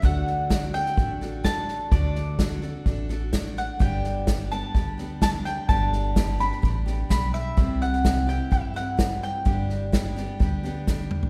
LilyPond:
<<
  \new Staff \with { instrumentName = "Mandolin" } { \time 4/4 \key g \major \tempo 4 = 127 fis''4. g''4. a''4 | d''2. r8 fis''8 | g''4. a''4. a''8 g''8 | a''4. b''4. b''8 e''8~ |
e''8 fis''4 g''8 e''8 fis''4 g''8~ | g''2. r4 | }
  \new Staff \with { instrumentName = "Steel-string acoustic guitar" } { \time 4/4 \key g \major <d a d' fis' a'>4 <a d' fis' a'>8 <d' fis' a'>8 <a d' fis' a'>8 <d' fis' a'>8 <a d' fis' a'>4 | <d a d' fis' a'>4 <a d' fis' a'>8 <d' fis' a'>8 <a d' fis' a'>8 <d' fis' a'>8 <a d' fis' a'>4 | <g, d g b d' g'>4 <g b d' g'>8 <g b d' g'>8 <g b d' g'>8 <g b d' g'>8 <g b d' g'>4 | <g, d g b d' g'>4 <g b d' g'>8 <g b d' g'>8 <g b d' g'>8 <g b d' g'>8 <g b d' g'>4 |
<c g c' e' g'>4 <g c' e' g'>8 <c' e' g'>8 <g c' e' g'>8 <c' e' g'>8 <g c' e' g'>4 | <g, d g b d' g'>4 <g b d' g'>8 <g b d' g'>8 <g b d' g'>8 <g b d' g'>8 <g b d' g'>4 | }
  \new Staff \with { instrumentName = "Upright bass" } { \clef bass \time 4/4 \key g \major d,2 a,,2 | d,2 a,,2 | g,,2 d,2 | g,,2 a,,4 b,,4 |
c,2 g,2 | g,,2 d,2 | }
  \new DrumStaff \with { instrumentName = "Drums" } \drummode { \time 4/4 <bd sn>8 sn8 <hhp bd sn>8 sn16 sn16 <bd sn>8 sn8 <hhp bd sn>8 sn8 | <bd sn>8 sn8 <hhp bd sn>8 sn8 <bd sn>8 sn8 <hhp bd sn>8 sn8 | <bd sn>8 sn8 <hhp bd sn>8 sn8 <bd sn>8 sn8 <hhp bd sn>8 sn8 | <bd sn>8 sn8 <hhp bd sn>8 sn16 sn16 <bd sn>8 sn8 <hhp bd sn>8 sn8 |
<bd sn>8 sn16 sn16 <hhp bd sn>8 sn8 <bd sn>8 sn8 <hhp bd sn>8 sn8 | <bd sn>8 sn8 <hhp bd sn>8 sn8 <bd sn>8 sn8 <hhp bd sn>8 toml16 tomfh16 | }
>>